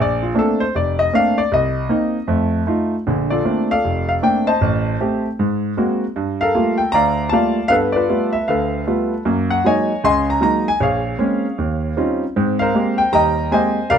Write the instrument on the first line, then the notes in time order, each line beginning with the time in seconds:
grand piano
Already playing: A#1
0.02 D5
0.23 F4
0.34 A3 A#3 C4 D4
0.39 A4
0.60 C5
0.75 F1 D5
0.99 D#5
1.13 A3 A#3 C4 D4 F5
1.38 D5
1.52 C2 D#5
1.89 A#3 C4 D#4
2.28 F2 A3
2.67 A3 D#4 F4
3.07 A#1 D3
3.30 F4 A4 D5
3.44 A3 A#3 C4 D4
3.71 A4 D5 F5
3.84 F1
4.09 F5
4.22 A3 A#3 C4 D4 G5
4.47 C5 D#5 A5
4.61 A1
5.00 A3 C4 G4
5.39 G#2
5.77 G#3 A#3 C4 F#4
6.16 G2
6.41 A4 A#4 F5
6.55 G3 A3 A#3 F4
6.78 G5
6.92 D2 D5 F5 A#5
7.29 G3 A3 A#3 F4 F5 A5
7.33 D5
7.68 G2 B3 A4 B4 F5
7.92 B4 D5
7.97 F4
8.09 G3 A3 B3 F4
8.33 E5
8.48 D2 A4 B4 F5
8.87 G3 A3 B3 F4
9.25 F#2 A#3
9.50 F#5
9.64 F#3 G#3 A#3 D#4 C#5 D#5 G#5
10.04 C#2 C#3 D#5 G#5 C6
10.30 A#5
10.41 F#3 G#3 A#3 D#4 A#5
10.68 G#5
10.80 A#1 G#4 C#5 F5
11.19 G#3 A#3 C4 C#4
11.58 D#2
11.97 G3 C4 C#4 D#4 F4
12.36 G#2 C4
12.59 A#4 C5 F5
12.74 G#3 A#3 C4 G4
12.98 G5
13.13 D#2 G3 D#5 G5 A#5
13.51 G#3 A#3 C4 G4 C5 D#5 G#5
13.90 C2 A#4 D5 F5